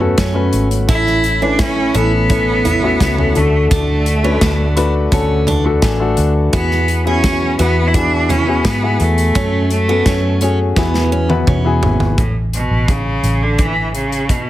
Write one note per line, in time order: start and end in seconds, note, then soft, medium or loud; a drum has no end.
0.00 0.14 F#2 medium
0.00 0.34 A3 medium
0.00 0.34 C#4 medium
0.00 0.35 F#4 medium
0.00 0.89 A4 medium
0.00 0.35 B4 medium
0.18 0.51 F#2 medium
0.18 0.68 C#4 medium
0.18 kick medium
0.18 snare loud
0.18 closed hi-hat loud
0.34 0.79 A3 medium
0.34 0.79 C#4 medium
0.34 0.80 F#4 medium
0.34 0.80 B4 medium
0.53 0.86 G#1 medium
0.53 closed hi-hat medium
0.71 closed hi-hat medium
0.87 1.90 A1 medium
0.87 1.90 A2 medium
0.87 1.32 A3 medium
0.87 1.33 C#4 medium
0.87 1.22 E4 loud
0.87 1.33 E4 medium
0.87 1.44 E4 loud
0.87 1.33 A4 medium
0.87 kick loud
0.87 closed hi-hat medium
1.06 snare soft
1.24 closed hi-hat medium
1.41 1.86 A3 medium
1.41 1.86 C#4 medium
1.41 1.58 C#4 medium
1.41 1.62 D4 medium
1.41 1.86 E4 medium
1.41 1.86 B4 medium
1.59 1.96 C#4 medium
1.59 1.93 E4 medium
1.59 kick loud
1.59 snare loud
1.59 closed hi-hat medium
1.94 2.96 A1 loud
1.94 2.24 A3 medium
1.94 3.39 B3 loud
1.94 2.24 C#4 medium
1.94 2.11 E4 medium
1.94 2.24 E4 medium
1.94 2.24 A4 medium
1.94 closed hi-hat medium
2.29 2.74 A3 medium
2.29 2.63 C#4 medium
2.29 2.74 C#4 medium
2.29 2.74 E4 medium
2.29 2.75 A4 medium
2.29 kick loud
2.29 closed hi-hat medium
2.65 2.82 E4 medium
2.65 closed hi-hat medium
2.65 floor tom medium
2.83 3.12 A3 medium
2.83 3.12 C#4 medium
2.83 3.13 E4 medium
2.83 3.13 F#4 medium
3.00 3.33 C#2 medium
3.00 kick loud
3.00 snare loud
3.00 closed hi-hat loud
3.18 3.33 A3 medium
3.18 3.36 C#4 medium
3.18 3.36 E4 medium
3.18 3.35 A4 medium
3.18 floor tom medium
3.35 3.69 D2 medium
3.35 4.37 D3 medium
3.35 4.09 A3 medium
3.35 3.72 A3 medium
3.35 4.09 D4 medium
3.35 4.09 F#4 medium
3.35 4.10 A4 medium
3.35 closed hi-hat medium
3.71 4.38 D2 medium
3.71 5.09 A3 medium
3.71 4.05 D4 medium
3.71 kick loud
3.71 closed hi-hat medium
4.06 closed hi-hat medium
4.23 4.68 A3 medium
4.23 4.41 C#4 medium
4.23 4.68 D4 medium
4.23 4.68 F#4 medium
4.23 4.69 B4 medium
4.41 5.08 D2 loud
4.41 4.75 D4 medium
4.41 kick loud
4.41 snare loud
4.41 closed hi-hat medium
4.76 5.06 A3 medium
4.76 5.06 D4 medium
4.76 4.94 D4 medium
4.76 5.06 F#4 medium
4.76 5.07 B4 loud
4.76 5.09 B5 medium
4.76 closed hi-hat medium
5.12 5.79 D2 loud
5.12 5.56 D3 medium
5.12 5.56 A3 medium
5.12 5.46 C#4 medium
5.12 5.56 F#4 medium
5.12 5.57 A4 loud
5.12 5.45 A5 medium
5.12 kick loud
5.12 closed hi-hat medium
5.47 5.64 D4 medium
5.47 5.80 A5 medium
5.47 closed hi-hat medium
5.47 floor tom medium
5.64 5.94 A3 medium
5.64 5.94 D4 medium
5.64 5.95 F#4 medium
5.64 5.95 A4 medium
5.82 6.15 A1 medium
5.82 6.33 D4 medium
5.82 5.99 G#5 medium
5.82 kick loud
5.82 snare loud
5.82 closed hi-hat loud
6.00 6.44 A3 medium
6.00 6.45 D4 medium
6.00 6.45 F#4 medium
6.00 6.45 A4 medium
6.00 6.16 F#5 medium
6.17 6.51 D2 medium
6.17 6.51 F#5 medium
6.17 closed hi-hat medium
6.52 7.55 E2 loud
6.52 7.55 E3 medium
6.52 6.97 B3 medium
6.52 7.03 B3 medium
6.52 6.97 E4 medium
6.52 6.87 F#4 loud
6.52 6.97 F#4 medium
6.52 6.98 G#4 medium
6.52 kick loud
6.52 closed hi-hat medium
6.71 snare soft
6.88 closed hi-hat medium
7.05 7.50 B3 medium
7.05 7.56 C#4 loud
7.05 7.50 E4 medium
7.05 7.23 E4 medium
7.05 7.51 F#4 medium
7.05 7.51 G#4 medium
7.24 7.57 F#4 medium
7.24 kick loud
7.24 snare loud
7.24 closed hi-hat medium
7.58 8.61 E2 loud
7.58 7.88 B3 medium
7.58 7.89 B3 medium
7.58 7.88 E4 medium
7.58 7.76 F#4 medium
7.58 7.89 F#4 medium
7.58 7.89 B4 medium
7.58 closed hi-hat medium
7.87 7.95 E4 medium
7.94 8.38 B3 medium
7.94 8.31 D4 loud
7.94 8.39 E4 medium
7.94 8.28 E4 medium
7.94 8.39 F#4 medium
7.94 8.39 G#4 medium
7.94 kick loud
7.94 closed hi-hat medium
8.29 8.65 C#4 loud
8.29 8.47 E4 medium
8.29 closed hi-hat medium
8.29 floor tom medium
8.47 8.77 B3 medium
8.47 8.77 E4 medium
8.47 8.77 F#4 medium
8.47 8.78 G#4 medium
8.64 8.98 G#2 medium
8.64 9.01 B3 loud
8.64 kick loud
8.64 snare loud
8.64 closed hi-hat loud
8.82 9.27 B3 medium
8.82 9.27 E4 medium
8.82 9.27 F#4 medium
8.82 9.27 G#4 medium
9.00 9.33 E2 medium
9.00 9.70 A3 medium
9.00 closed hi-hat medium
9.18 closed hi-hat medium
9.35 10.02 F#2 loud
9.35 9.80 A3 medium
9.35 9.80 C#4 medium
9.35 9.69 C#4 loud
9.35 9.80 F#4 medium
9.35 9.80 A4 medium
9.35 kick loud
9.35 closed hi-hat medium
9.70 10.37 A3 medium
9.70 closed hi-hat medium
9.88 10.32 A3 medium
9.88 10.05 B3 medium
9.88 10.33 C#4 medium
9.88 10.33 F#4 medium
9.88 10.34 A4 medium
10.06 10.73 F#2 loud
10.06 10.40 C#4 medium
10.06 kick loud
10.06 snare loud
10.06 closed hi-hat medium
10.41 10.71 A3 medium
10.41 10.71 C#4 medium
10.41 10.58 C#4 medium
10.41 10.71 F#4 medium
10.41 10.72 G#4 medium
10.41 closed hi-hat medium
10.76 11.43 E2 loud
10.76 11.79 E3 medium
10.76 11.21 B3 medium
10.76 11.10 B3 medium
10.76 11.21 E4 medium
10.76 11.21 F#4 medium
10.76 11.22 G#4 medium
10.76 kick loud
10.76 snare medium
10.94 snare medium
11.12 11.29 C#4 medium
11.29 11.59 B3 medium
11.29 11.59 E4 medium
11.29 11.59 F#4 medium
11.29 11.60 B4 medium
11.29 high tom medium
11.47 11.80 E2 medium
11.47 11.97 C#4 medium
11.47 kick loud
11.47 mid tom medium
11.64 12.09 B3 medium
11.64 12.09 E4 medium
11.64 12.10 F#4 medium
11.64 12.10 G#4 medium
11.82 12.15 G#1 medium
11.82 floor tom loud
12.00 floor tom medium
12.18 12.67 A1 medium
12.18 12.34 A2 medium
12.18 kick loud
12.18 closed hi-hat medium
12.53 12.91 B2 medium
12.53 closed hi-hat medium
12.71 13.20 A1 medium
12.88 13.44 C#3 medium
12.88 kick medium
12.88 closed hi-hat medium
13.23 14.50 A1 medium
13.23 closed hi-hat medium
13.42 13.61 D3 medium
13.59 13.94 E3 medium
13.59 kick loud
13.59 closed hi-hat medium
13.94 14.31 C#3 medium
13.94 closed hi-hat medium
14.12 closed hi-hat soft
14.29 14.50 B2 medium
14.29 kick medium
14.29 closed hi-hat medium